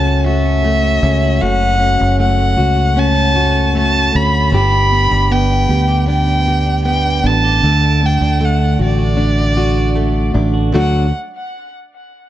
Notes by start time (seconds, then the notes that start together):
Already playing: C#2 F#2 A3 C#4 F#4 A5
0.06 C#4
0.26 A3 F#4 E5
0.45 C#4
0.64 A3
0.84 C#4
1.03 C#2 A3 C#4
1.23 F#4
1.41 F#1 F#2 A3 F#4 F#5
1.61 C#4
1.79 A3 C#4
1.99 F#1 C#4
2.19 A3 F#5
2.38 C#4
2.56 C#2 A3 F#4
2.77 F#4
2.96 A3 C#4 A5
3.15 C#4
3.35 A3 F#4
3.53 C#4
3.73 A3
3.79 A5
3.92 C#4
4.13 D2 A3 C#4 B5
4.33 F#4
4.52 G1 G2 B3 G4 B5
4.72 D4
4.91 B3 D4
5.11 G1 D4
5.30 B3 G5
5.50 D4
5.69 D2 B3 G4
5.88 G4
6.07 B3 D4 G5
6.27 D4
6.46 B3 G4
6.66 D4
6.85 B3 G5
7.05 D4
7.23 A1 B3 D4 A5
7.44 G4
7.63 D2 D3 A3
7.84 D4
8.03 A3 D4 G5
8.21 D2 D4
8.40 A3
8.45 F#5
8.60 D4
8.79 A1 A3 F#4
8.84 D5
8.99 F#4
9.17 A3 D4
9.38 D4
9.56 A3 F#4
9.76 D4
9.95 A3
10.14 D4
10.34 A1 A3 D4
10.54 F#4
10.72 D2 D3 F#3 A3 D4 F#4
10.77 F#5